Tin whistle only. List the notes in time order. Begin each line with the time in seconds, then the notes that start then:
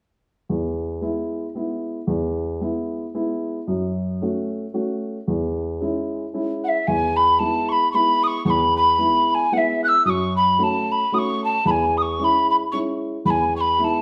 6.64 F#5
6.68 E5
6.87 G#5
7.16 B5
7.39 A5
7.69 B5 C#6
7.92 B5 C#6
8.23 C#6 D#6
8.46 C#6
8.50 B5
8.77 B5
9.30 B5
9.34 G#5
9.53 F#5
9.57 E5
9.84 F#6
9.88 E6
10.06 D#6
10.10 C#6
10.36 B5
10.59 A5 B5
10.92 B5
11.14 D#6
11.18 C#6
11.44 A5
11.67 G#5 B5
11.97 D#6
12.02 C#6
12.19 C#6
12.24 B5
12.50 B5
12.72 C#6
13.26 B5
13.30 G#5
13.56 C#6
13.61 B5
13.80 B5
13.84 A5